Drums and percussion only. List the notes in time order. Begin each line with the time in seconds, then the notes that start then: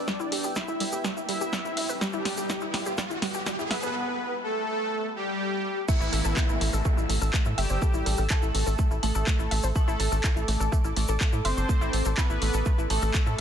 0.08 kick, snare, shaker
0.20 shaker
0.32 open hi-hat
0.44 shaker
0.56 kick, snare, shaker
0.68 shaker
0.80 open hi-hat
0.92 shaker
1.04 kick, snare, shaker
1.17 shaker
1.29 open hi-hat
1.41 shaker
1.53 kick, snare, shaker
1.65 shaker
1.77 open hi-hat
1.89 shaker
2.01 kick, snare, shaker
2.13 shaker
2.25 snare, open hi-hat
2.37 shaker
2.50 kick, snare, shaker
2.61 shaker
2.74 snare, open hi-hat
2.86 shaker
2.98 kick, snare, shaker
3.10 shaker
3.22 snare, open hi-hat
3.34 shaker
3.46 kick, snare, shaker
3.59 shaker
3.71 snare, open hi-hat
3.83 shaker
5.88 kick, crash, shaker
6.01 shaker
6.13 open hi-hat
6.25 shaker
6.37 kick, clap, shaker
6.49 shaker
6.61 open hi-hat
6.73 shaker
6.85 kick, shaker
6.98 shaker
7.10 open hi-hat
7.21 shaker
7.34 kick, clap, shaker
7.45 shaker
7.58 open hi-hat
7.69 shaker
7.82 kick, shaker
7.94 shaker
8.06 open hi-hat
8.17 shaker
8.30 kick, clap, shaker
8.42 shaker
8.55 open hi-hat
8.67 shaker
8.79 kick, shaker
8.91 shaker
9.03 open hi-hat
9.15 shaker
9.27 kick, clap, shaker
9.39 shaker
9.51 open hi-hat
9.63 shaker
9.75 kick, shaker
9.88 shaker
10.00 open hi-hat
10.12 shaker
10.24 kick, clap, shaker
10.36 shaker
10.48 open hi-hat
10.61 shaker
10.72 kick, shaker
10.84 shaker
10.96 open hi-hat
11.08 shaker
11.21 kick, clap, shaker
11.33 shaker
11.45 open hi-hat
11.58 shaker
11.69 kick, shaker
11.82 shaker
11.93 open hi-hat
12.05 shaker
12.18 kick, clap, shaker
12.30 shaker
12.42 open hi-hat
12.54 shaker
12.65 kick, shaker
12.79 shaker
12.90 open hi-hat
13.02 shaker
13.14 kick, clap, shaker
13.26 shaker